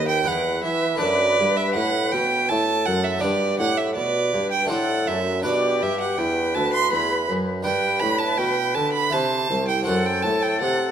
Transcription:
0.00 0.21 D#2 medium
0.00 0.28 D#2 medium
0.00 0.19 A3 medium
0.00 0.20 B3 medium
0.00 0.20 B4 medium
0.00 0.21 B4 medium
0.08 0.29 G5 medium
0.23 0.59 E2 medium
0.23 0.63 E2 medium
0.23 0.97 B3 medium
0.23 0.97 B4 medium
0.23 2.51 B4 medium
0.27 0.64 F#5 medium
0.63 0.96 E3 medium
0.63 1.00 E3 medium
0.63 0.99 E5 medium
0.96 1.34 A3 medium
0.96 3.17 D4 medium
0.96 3.17 A4 medium
1.00 1.34 F#2 medium
1.00 1.37 F#2 medium
1.00 1.58 D5 medium
1.39 1.72 G2 medium
1.39 1.75 G2 medium
1.57 1.74 E5 medium
1.74 2.08 A2 medium
1.74 2.12 A2 medium
1.74 2.14 F#5 medium
2.12 2.45 B2 medium
2.12 2.49 B2 medium
2.12 2.50 G5 medium
2.49 2.82 A2 medium
2.49 2.86 A2 medium
2.49 3.22 A4 medium
2.49 2.87 A5 medium
2.86 3.19 F#2 medium
2.86 3.22 F#2 medium
2.86 3.05 F#5 medium
3.04 3.23 E5 medium
3.18 3.56 B3 medium
3.18 3.57 D4 soft
3.18 4.66 G4 medium
3.18 3.59 D5 medium
3.23 3.56 G2 medium
3.23 3.59 G2 medium
3.23 3.95 G4 medium
3.59 3.92 A2 medium
3.59 3.96 A2 medium
3.59 3.79 F#5 medium
3.77 3.95 E5 medium
3.95 4.29 B2 medium
3.95 4.33 B2 medium
3.95 4.70 B4 medium
3.95 4.50 D5 medium
4.33 4.66 G2 medium
4.33 4.70 G2 medium
4.51 4.70 G5 medium
4.65 5.39 A3 soft
4.65 5.40 D4 soft
4.65 5.41 C5 soft
4.70 5.03 A2 medium
4.70 5.07 A2 medium
4.70 5.18 A4 medium
4.70 5.09 F#5 medium
5.06 5.40 F#2 medium
5.06 5.44 F#2 medium
5.06 5.44 E5 medium
5.42 5.80 B2 medium
5.42 5.78 B2 medium
5.42 7.59 D4 soft
5.42 6.20 G4 medium
5.42 7.60 B4 medium
5.42 5.84 D5 medium
5.81 6.14 G2 medium
5.81 6.17 G2 medium
5.81 6.00 E5 medium
6.01 6.19 F#5 medium
6.18 6.54 E2 medium
6.18 6.51 E2 medium
6.18 7.65 B4 medium
6.18 6.56 G5 medium
6.55 6.91 D2 medium
6.55 6.88 D2 medium
6.55 6.73 A5 medium
6.74 6.91 C6 medium
6.91 7.29 E2 medium
6.91 7.25 E2 medium
6.91 7.28 B5 medium
7.28 7.64 F#2 medium
7.28 7.62 F#2 medium
7.63 8.03 G2 medium
7.63 7.98 G2 medium
7.63 9.07 D4 soft
7.63 9.07 B4 soft
7.63 9.09 B4 medium
7.63 8.01 G5 medium
8.00 8.37 A2 medium
8.00 8.35 A2 medium
8.00 8.20 B5 medium
8.19 8.39 A5 medium
8.38 8.77 B2 medium
8.38 8.72 B2 medium
8.38 8.76 G5 medium
8.75 9.12 D3 medium
8.75 9.09 D3 medium
8.75 8.92 A5 medium
8.93 9.14 B5 medium
9.10 9.48 C3 medium
9.10 9.46 C3 medium
9.10 9.83 E4 soft
9.10 9.83 B4 soft
9.10 9.84 C5 medium
9.10 9.68 A5 medium
9.50 9.86 C2 medium
9.50 9.83 C2 medium
9.68 9.85 G5 medium
9.83 10.23 F#2 medium
9.83 10.91 C4 soft
9.83 10.91 F#4 soft
9.83 10.91 A4 soft
9.83 10.91 A4 medium
9.83 10.07 F#5 medium
9.87 10.20 F#2 medium
10.06 10.24 G5 medium
10.22 10.63 A2 medium
10.22 10.57 A2 soft
10.22 10.44 A5 medium
10.42 10.60 G5 medium
10.61 10.91 C3 medium
10.61 10.91 C3 soft
10.61 10.91 F#5 medium

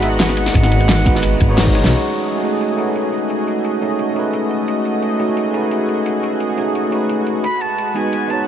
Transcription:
0.00 0.53 G#1 loud
0.00 1.05 G#3 medium
0.00 1.05 B3 medium
0.00 0.02 D#4 medium
0.00 1.04 D#4 medium
0.00 0.04 F#4 medium
0.00 1.88 F#4 medium
0.00 1.05 F#4 medium
0.00 1.07 B4 medium
0.00 1.88 B4 medium
0.00 0.05 D#5 medium
0.00 0.08 E5 medium
0.00 1.88 F#5 medium
0.00 closed hi-hat medium
0.00 ride medium
0.00 shaker medium
0.05 1.05 D#5 medium
0.20 0.26 F#5 medium
0.20 snare loud
0.20 closed hi-hat loud
0.20 ride loud
0.29 snare medium
0.29 shaker soft
0.37 1.54 F#5 loud
0.37 open hi-hat medium
0.37 ride medium
0.37 shaker medium
0.46 snare medium
0.46 snare soft
0.54 1.39 G#1 loud
0.54 kick loud
0.54 closed hi-hat loud
0.54 ride loud
0.63 snare soft
0.63 shaker soft
0.71 closed hi-hat medium
0.71 ride medium
0.71 shaker medium
0.80 ride soft
0.89 snare loud
0.89 closed hi-hat loud
0.89 ride medium
1.05 1.38 G#3 medium
1.05 1.38 B3 medium
1.05 1.39 D#4 medium
1.05 1.39 F#4 medium
1.05 1.39 B4 medium
1.05 kick loud
1.05 snare soft
1.05 closed hi-hat medium
1.05 ride medium
1.05 shaker medium
1.15 snare soft
1.23 closed hi-hat loud
1.23 ride medium
1.32 shaker soft
1.40 1.84 G#1 medium
1.40 kick loud
1.40 closed hi-hat medium
1.40 ride medium
1.40 shaker medium
1.48 1.72 G#3 loud
1.48 1.73 B3 medium
1.48 1.73 D#4 medium
1.48 1.73 F#4 medium
1.48 1.74 C#5 loud
1.57 snare loud
1.57 closed hi-hat loud
1.57 open hi-hat medium
1.67 kick medium
1.67 shaker soft
1.74 2.09 G#3 medium
1.74 2.09 C#4 medium
1.74 2.09 D#4 medium
1.74 2.10 F#4 medium
1.74 2.10 C#5 loud
1.74 open hi-hat medium
1.74 ride medium
1.74 shaker medium
1.84 1.91 B1 medium
1.84 snare medium
1.92 7.40 A3 medium
1.92 8.48 F#4 medium
1.92 4.65 G#4 medium
1.92 7.40 D#5 medium
1.92 closed hi-hat medium
2.09 closed hi-hat medium
2.27 closed hi-hat medium
2.43 2.75 A3 medium
2.43 2.76 C#4 medium
2.43 2.77 D#4 medium
2.43 2.77 F#4 medium
2.43 2.77 G#4 medium
2.43 closed hi-hat medium
2.61 closed hi-hat medium
2.76 3.79 A3 medium
2.76 3.79 C#4 medium
2.76 3.80 D#4 medium
2.76 3.80 F#4 medium
2.76 closed hi-hat medium
2.81 3.81 B4 medium
2.95 closed hi-hat medium
3.13 open hi-hat medium
3.30 closed hi-hat medium
3.47 closed hi-hat medium
3.65 closed hi-hat medium
3.80 4.13 A3 medium
3.80 4.14 C#4 medium
3.80 4.15 D#4 medium
3.80 4.15 F#4 medium
3.80 4.15 G#4 medium
3.80 closed hi-hat medium
3.99 closed hi-hat medium
4.14 5.17 A3 medium
4.14 5.17 C#4 medium
4.14 5.18 D#4 medium
4.14 5.18 F#4 medium
4.14 closed hi-hat medium
4.19 5.19 B4 medium
4.33 closed hi-hat medium
4.51 open hi-hat medium
4.68 7.41 G#4 medium
4.68 closed hi-hat medium
4.85 closed hi-hat medium
5.02 closed hi-hat medium
5.18 5.50 A3 medium
5.18 5.52 C#4 medium
5.18 5.53 D#4 medium
5.18 5.53 F#4 medium
5.18 5.53 G#4 medium
5.18 closed hi-hat medium
5.37 closed hi-hat medium
5.51 6.54 A3 medium
5.51 6.55 C#4 medium
5.51 6.56 D#4 medium
5.51 6.56 F#4 medium
5.51 closed hi-hat medium
5.57 6.57 B4 medium
5.71 closed hi-hat medium
5.89 open hi-hat medium
6.06 closed hi-hat medium
6.23 closed hi-hat medium
6.40 closed hi-hat medium
6.56 6.88 A3 medium
6.56 6.90 C#4 medium
6.56 6.91 D#4 medium
6.56 6.91 F#4 medium
6.56 6.91 G#4 medium
6.56 closed hi-hat medium
6.75 closed hi-hat medium
6.90 7.42 A3 medium
6.90 7.42 C#4 medium
6.90 7.43 D#4 medium
6.90 7.44 F#4 medium
6.90 closed hi-hat medium
6.95 7.44 B4 medium
7.09 closed hi-hat medium
7.27 open hi-hat medium
7.44 8.48 G#3 medium
7.44 8.48 B4 medium
7.44 7.63 B5 loud
7.44 closed hi-hat medium
7.61 7.97 A5 loud
7.61 closed hi-hat medium
7.78 closed hi-hat medium
7.94 8.26 G#3 medium
7.94 8.27 B3 medium
7.94 8.28 D#4 medium
7.94 8.29 F#4 medium
7.94 8.29 G#4 medium
7.94 8.32 G#5 loud
7.94 closed hi-hat medium
8.13 closed hi-hat medium
8.27 8.48 G#3 medium
8.27 8.48 B3 medium
8.27 8.48 D#4 medium
8.27 8.48 F#4 medium
8.27 8.47 A5 medium
8.27 closed hi-hat medium
8.33 8.48 C#5 medium

